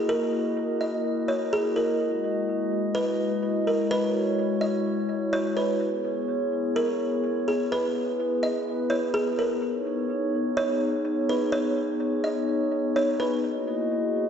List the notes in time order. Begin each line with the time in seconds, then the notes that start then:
Already playing: A#3 E4 F#4 D#5
0.09 A#4
0.81 D#5
1.28 C#5
1.53 G#4
1.76 A#4
2.00 G#3 E4
2.95 B4
3.67 A#4
3.90 B4 C#5
4.61 D#5
5.33 C#5
5.57 B4
5.81 B3 E4 G#4 C#5
6.76 A#4
7.48 G#4
7.71 B4
8.43 D#5
8.90 C#5
9.14 G#4
9.39 A#4
9.62 B3 D#4 G#4 C#5
10.57 C#5
11.29 B4
11.52 C#5
12.24 D#5
12.96 C#5
13.20 B4
13.43 A#3 E4 F#4 G#4 D#5